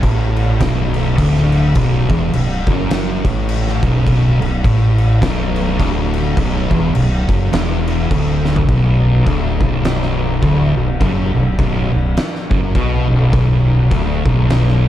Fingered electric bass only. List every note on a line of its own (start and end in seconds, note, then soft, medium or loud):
0.03 0.57 A1 medium
0.61 1.14 B0 medium
1.19 1.72 D1 loud
1.76 2.07 B0 medium
2.10 2.32 E1 medium
2.34 2.65 B0 medium
2.67 3.21 F#1 medium
3.25 3.78 A1 medium
3.83 4.05 B0 loud
4.07 4.38 B0 medium
4.40 4.62 B0 medium
4.65 5.18 A1 loud
5.22 5.75 B0 medium
5.80 6.33 D1 loud
6.37 6.69 B0 medium
6.71 6.93 E1 medium
6.95 7.26 B0 medium
7.29 7.51 F#1 medium
7.53 8.07 E1 medium
8.11 8.65 D1 loud
8.69 9.23 B0 medium
9.27 9.58 D1 medium
9.61 10.39 B0 loud
10.43 10.74 D1 loud
10.76 10.99 B0 medium
11.01 11.33 F#1 medium
11.35 11.58 B0 medium
11.59 11.91 B0 medium
11.94 12.16 B0 medium
12.51 12.73 F#1 loud
12.75 13.07 B1 loud
13.10 13.32 B0 medium
13.33 13.87 B0 medium
13.91 14.23 D1 medium
14.26 14.88 B0 loud